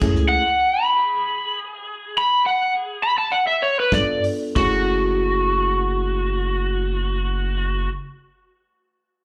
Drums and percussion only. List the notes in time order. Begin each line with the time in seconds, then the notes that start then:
0.01 kick, closed hi-hat, crash
0.15 snare
3.92 kick, snare, closed hi-hat
4.24 open hi-hat
4.56 kick, crash